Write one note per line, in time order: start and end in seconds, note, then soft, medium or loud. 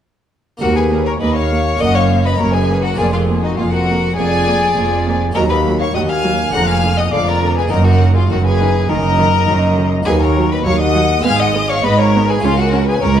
0.57 1.14 D#2 medium
0.57 1.75 A#3 medium
0.57 0.69 A#3 medium
0.57 1.75 D#4 medium
0.57 0.77 F#4 medium
0.57 1.76 A#4 medium
0.57 0.75 A#4 medium
0.57 0.67 F#5 loud
0.61 1.11 D#2 medium
0.75 1.05 G#4 medium
0.75 1.06 B4 medium
0.75 0.84 G#5 loud
0.92 1.00 A#3 medium
1.05 1.11 A#4 medium
1.05 1.21 C#5 medium
1.05 1.12 A#5 loud
1.20 1.73 D#2 medium
1.20 1.70 D#2 medium
1.20 1.29 A#3 medium
1.20 1.35 B4 medium
1.20 1.36 D#5 medium
1.20 1.35 B5 loud
1.35 1.82 C#5 loud
1.35 1.80 F5 medium
1.35 1.79 C#6 loud
1.50 1.58 A#3 medium
1.76 2.33 F#1 medium
1.76 2.33 F#2 loud
1.76 2.93 A#3 medium
1.76 2.94 C#4 medium
1.76 2.95 A#4 medium
1.76 1.95 D#6 loud
1.80 2.30 F#2 medium
1.80 1.89 A#3 medium
1.80 1.96 D#5 loud
1.80 1.95 F#5 loud
1.95 2.27 C#5 loud
1.95 2.25 F5 loud
1.95 2.03 C#6 loud
2.10 2.18 A#3 medium
2.24 2.39 B4 medium
2.24 2.40 D#5 medium
2.24 2.39 B5 loud
2.38 2.92 F#1 medium
2.38 2.89 F#2 medium
2.38 2.92 F#2 medium
2.38 2.48 A#3 medium
2.38 2.55 A#4 medium
2.38 2.54 C#5 loud
2.38 2.54 A#5 loud
2.53 2.84 G#4 medium
2.53 2.84 B4 medium
2.53 2.83 G#5 loud
2.69 2.77 A#3 medium
2.82 2.99 F#4 medium
2.82 2.98 A#4 medium
2.82 2.98 F#5 loud
2.94 5.29 A#3 medium
2.94 5.30 D4 medium
2.94 5.31 F4 medium
2.94 3.12 G#4 loud
2.94 3.13 D5 medium
2.98 3.51 F1 loud
2.98 3.48 F2 medium
2.98 3.51 F2 loud
2.98 3.08 A#3 medium
2.98 3.05 G#5 loud
3.12 3.20 F4 medium
3.12 3.42 G#4 medium
3.12 3.21 F5 medium
3.28 3.36 A#3 medium
3.42 3.57 D#4 medium
3.42 3.58 F#4 medium
3.42 3.58 D#5 medium
3.57 4.11 F1 medium
3.57 4.07 F2 medium
3.57 4.11 F2 medium
3.57 3.66 A#3 medium
3.57 3.63 F4 medium
3.57 3.73 G#4 medium
3.57 3.72 F5 loud
3.71 4.15 F#4 medium
3.71 4.17 A#4 medium
3.71 4.17 F#5 loud
3.88 3.96 A#3 medium
4.16 4.70 F1 medium
4.16 4.66 F2 medium
4.16 4.70 F2 medium
4.16 4.26 A#3 medium
4.16 5.18 G#4 loud
4.16 5.20 D5 loud
4.16 5.18 G#5 loud
4.47 4.55 A#3 medium
4.76 5.29 F1 medium
4.76 5.25 F2 medium
4.76 5.29 F2 medium
4.76 4.84 A#3 medium
5.06 5.14 A#3 medium
5.31 6.48 A#3 medium
5.31 6.48 D#4 medium
5.31 6.49 F#4 medium
5.31 5.41 A#4 loud
5.31 5.49 A#5 loud
5.35 5.85 D#2 medium
5.35 5.88 D#2 medium
5.35 5.88 D#2 loud
5.35 5.44 F#3 medium
5.35 5.41 D#5 medium
5.49 5.57 B4 medium
5.49 5.58 D#5 medium
5.49 5.79 B5 loud
5.65 5.73 F#3 medium
5.79 5.96 C#5 medium
5.79 5.85 F5 medium
5.79 5.95 C#6 loud
5.94 6.47 D#2 medium
5.94 6.44 D#2 medium
5.94 6.02 F#3 medium
5.94 6.10 D#5 medium
5.94 6.00 F#5 loud
5.94 6.00 D#6 loud
6.09 6.52 F5 loud
6.09 6.53 G#5 loud
6.09 6.53 F6 loud
6.24 6.32 F#3 medium
6.49 7.66 A#3 medium
6.49 7.67 D4 medium
6.49 7.68 G#4 medium
6.49 6.66 F#5 loud
6.49 6.68 F#6 loud
6.54 7.06 F1 medium
6.54 7.03 F2 medium
6.54 7.06 F2 medium
6.54 6.62 D3 medium
6.54 6.68 A#5 loud
6.67 6.98 F5 loud
6.67 6.98 G#5 medium
6.67 6.97 F6 loud
6.83 6.91 D3 medium
6.97 7.13 D#5 medium
6.97 7.03 F#5 medium
6.97 7.13 D#6 loud
7.10 7.65 F1 medium
7.10 7.62 F2 medium
7.10 7.65 F2 medium
7.10 7.21 D3 medium
7.10 7.27 D5 loud
7.10 7.26 F5 loud
7.10 7.27 D6 loud
7.26 7.56 A#4 medium
7.26 7.56 D5 loud
7.26 7.57 A#5 loud
7.42 7.50 D3 medium
7.56 7.72 G#4 medium
7.56 7.71 B4 medium
7.56 7.63 G#5 loud
7.67 7.79 D#3 medium
7.67 10.01 A#3 medium
7.67 10.02 D#4 medium
7.67 10.03 F#4 medium
7.67 7.86 A#4 loud
7.67 7.85 D#5 loud
7.71 8.24 F#1 loud
7.71 8.21 F#2 medium
7.71 8.24 F#2 loud
7.71 7.78 A#5 loud
7.84 8.15 F#4 medium
7.84 8.15 A#4 medium
7.84 8.15 F#5 loud
8.01 8.09 D#3 medium
8.14 8.30 F4 medium
8.14 8.21 G#4 medium
8.14 8.30 F5 loud
8.29 8.83 F#1 medium
8.29 8.80 F#2 medium
8.29 8.83 F#2 medium
8.29 8.39 D#3 medium
8.29 8.36 F#4 medium
8.29 8.45 A#4 medium
8.29 8.45 F#5 loud
8.44 8.91 G#4 loud
8.44 8.88 B4 loud
8.44 8.89 G#5 loud
8.60 8.68 D#3 medium
8.89 9.42 F#1 loud
8.89 9.38 F#2 medium
8.89 9.42 F#2 loud
8.89 8.97 D#3 medium
8.89 9.92 A#4 loud
8.89 9.91 D#5 loud
8.89 9.90 A#5 loud
9.18 9.26 D#3 medium
9.48 10.00 F#1 medium
9.48 9.97 F#2 medium
9.48 10.00 F#2 loud
9.48 9.56 D#3 medium
9.77 9.85 D#3 medium
10.02 11.19 A#3 medium
10.02 11.20 D#4 medium
10.02 11.21 F#4 medium
10.02 10.12 G#4 loud
10.02 10.21 G#5 loud
10.07 10.59 D#2 loud
10.07 10.56 D#2 medium
10.07 10.60 D#2 loud
10.07 10.15 F#3 medium
10.07 10.13 B4 loud
10.21 10.53 A#4 medium
10.21 10.51 C#5 medium
10.21 10.51 A#5 loud
10.37 10.45 F#3 medium
10.52 10.66 B4 loud
10.52 10.66 D#5 medium
10.52 10.58 B5 loud
10.65 11.18 D#2 medium
10.65 11.15 D#2 medium
10.65 11.18 D#2 medium
10.65 10.74 F#3 medium
10.65 10.81 C#5 loud
10.65 10.81 F5 loud
10.65 10.80 C#6 loud
10.80 11.25 D#5 loud
10.80 11.25 F#5 loud
10.80 11.24 D#6 loud
10.95 11.03 F#3 medium
11.19 12.37 G#3 medium
11.19 12.38 B3 medium
11.19 12.38 D#4 medium
11.23 11.78 G#1 loud
11.23 11.74 G#2 medium
11.23 11.77 G#2 loud
11.23 11.32 B3 medium
11.23 12.39 G#4 medium
11.23 11.41 F5 loud
11.23 11.40 G#5 loud
11.23 11.40 F6 loud
11.39 11.70 D#5 loud
11.39 11.47 F#5 loud
11.39 11.70 D#6 loud
11.54 11.62 B3 medium
11.69 11.85 C#5 loud
11.69 11.84 F5 loud
11.69 11.85 C#6 loud
11.83 12.37 G#1 loud
11.83 12.33 G#2 medium
11.83 12.37 G#2 loud
11.83 11.91 B3 medium
11.83 11.99 B4 loud
11.83 11.99 D#5 loud
11.83 12.00 B5 loud
11.98 12.31 A#4 loud
11.98 12.28 C#5 loud
11.98 12.29 A#5 loud
12.14 12.22 B3 medium
12.28 12.45 G#4 loud
12.28 12.43 B4 medium
12.28 12.44 G#5 loud
12.39 12.95 C#2 loud
12.39 13.20 C#4 medium
12.39 13.20 F4 medium
12.39 13.20 G#4 medium
12.39 12.57 G#4 loud
12.43 12.95 C#2 loud
12.43 12.93 C#2 medium
12.43 12.52 C#4 medium
12.43 12.58 F4 loud
12.43 12.58 F5 loud
12.56 12.87 F#4 medium
12.56 12.86 A#4 loud
12.56 12.89 F#5 loud
12.72 12.80 C#4 medium
12.86 12.94 G#4 loud
12.86 13.02 B4 loud
12.86 13.03 G#5 loud
13.01 13.20 C#2 loud
13.01 13.20 C#2 medium
13.01 13.10 C#4 medium
13.01 13.19 A#4 loud
13.01 13.17 C#5 loud
13.01 13.18 A#5 loud
13.15 13.20 D#5 loud